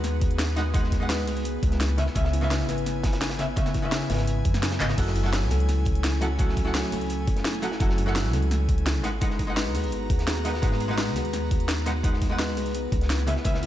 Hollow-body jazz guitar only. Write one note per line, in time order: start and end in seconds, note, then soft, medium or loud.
0.00 0.54 G#3 medium
0.00 0.55 D#4 medium
0.00 0.55 B4 medium
0.00 0.55 F#5 medium
0.56 0.62 G#3 medium
0.56 0.62 D#4 medium
0.56 0.62 B4 medium
0.56 0.63 F#5 medium
0.74 0.99 G#3 medium
0.74 0.99 D#4 medium
0.74 0.99 B4 medium
0.74 0.99 F#5 medium
1.00 1.43 G#3 medium
1.00 1.44 D#4 medium
1.00 1.44 B4 medium
1.00 1.45 F#5 medium
1.97 2.03 C#3 medium
1.97 2.03 C#4 medium
1.97 2.04 B4 medium
1.97 2.04 E5 medium
2.15 2.40 C#3 medium
2.15 2.40 C#4 medium
2.15 2.40 B4 medium
2.15 2.41 E5 medium
2.41 3.37 C#3 medium
2.41 3.37 C#4 medium
2.41 3.37 B4 medium
2.41 3.38 E5 medium
3.39 3.44 C#3 medium
3.39 3.45 C#4 medium
3.39 3.45 B4 medium
3.39 3.45 E5 medium
3.56 3.81 C#3 medium
3.56 3.81 C#4 medium
3.56 3.82 B4 medium
3.56 3.82 E5 medium
3.82 4.78 C#3 medium
3.82 4.78 C#4 medium
3.82 4.79 B4 medium
3.82 4.79 E5 medium
4.79 4.96 C#3 medium
4.79 4.96 C#4 medium
4.79 4.96 B4 medium
4.79 4.96 D#5 medium
4.97 5.22 F#3 medium
4.97 5.22 E4 medium
4.97 5.23 A4 medium
4.97 5.23 F#5 medium
5.23 6.19 F#3 medium
5.23 6.19 E4 medium
5.23 6.20 A4 medium
5.23 6.20 F#5 medium
6.21 6.27 F#3 medium
6.21 6.27 E4 medium
6.21 6.27 A4 medium
6.21 6.27 F#5 medium
6.39 6.64 F#3 medium
6.39 6.64 E4 medium
6.39 6.64 A4 medium
6.39 6.64 F#5 medium
6.65 7.60 F#3 medium
6.65 7.61 E4 medium
6.65 7.61 A4 medium
6.65 7.61 F#5 medium
7.62 7.68 F#3 medium
7.62 7.68 E4 medium
7.62 7.68 A4 medium
7.62 7.68 F#5 medium
7.80 8.05 F#3 medium
7.80 8.05 E4 medium
7.80 8.05 A4 medium
7.80 8.05 F#5 medium
8.06 9.01 F#3 medium
8.06 9.02 E4 medium
8.06 9.02 A4 medium
8.06 9.03 F#5 medium
9.03 9.09 G#3 medium
9.03 9.09 D#4 medium
9.03 9.09 B4 medium
9.03 9.10 F#5 medium
9.21 9.46 G#3 medium
9.21 9.46 D#4 medium
9.21 9.46 B4 medium
9.21 9.47 F#5 medium
9.47 10.42 G#3 medium
9.47 10.43 D#4 medium
9.47 10.43 B4 medium
9.47 10.44 F#5 medium
10.45 10.50 G#3 medium
10.45 10.50 D#4 medium
10.45 10.51 B4 medium
10.45 10.51 F#5 medium
10.62 10.87 G#3 medium
10.62 10.87 D#4 medium
10.62 10.87 B4 medium
10.62 10.88 F#5 medium
10.88 11.84 G#3 medium
10.88 11.84 D#4 medium
10.88 11.84 B4 medium
10.88 11.85 F#5 medium
11.86 11.91 G#3 medium
11.86 11.92 D#4 medium
11.86 11.92 B4 medium
11.86 11.92 F#5 medium
12.03 12.28 G#3 medium
12.03 12.28 D#4 medium
12.03 12.29 B4 medium
12.03 12.29 F#5 medium
12.29 12.73 G#3 medium
12.29 12.73 D#4 medium
12.29 12.74 B4 medium
12.29 12.74 F#5 medium
13.27 13.32 C#3 medium
13.27 13.33 C#4 medium
13.27 13.33 B4 medium
13.27 13.33 E5 medium
13.44 13.66 C#3 medium
13.44 13.66 C#4 medium
13.44 13.66 B4 medium
13.44 13.66 E5 medium